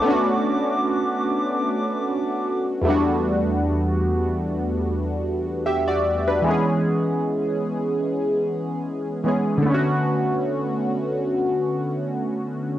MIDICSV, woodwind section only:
0, 0, Header, 1, 2, 480
1, 0, Start_track
1, 0, Key_signature, 2, "minor"
1, 0, Tempo, 800000
1, 29, Time_signature, 4, 2, 24, 8
1, 7673, End_track
2, 0, Start_track
2, 0, Title_t, "Woodwind section"
2, 0, Program_c, 0, 71
2, 0, Note_on_c, 0, 71, 79
2, 0, Note_on_c, 0, 78, 70
2, 0, Note_on_c, 0, 81, 72
2, 0, Note_on_c, 0, 86, 89
2, 1608, Note_off_c, 0, 71, 0
2, 1608, Note_off_c, 0, 81, 0
2, 1608, Note_off_c, 0, 86, 0
2, 1710, Note_on_c, 0, 69, 63
2, 1710, Note_on_c, 0, 81, 59
2, 1710, Note_on_c, 0, 86, 74
2, 1711, Note_on_c, 0, 64, 65
2, 1924, Note_off_c, 0, 78, 0
2, 1947, Note_off_c, 0, 69, 0
2, 1947, Note_off_c, 0, 81, 0
2, 1947, Note_off_c, 0, 86, 0
2, 1948, Note_off_c, 0, 64, 0
2, 7673, End_track
0, 0, End_of_file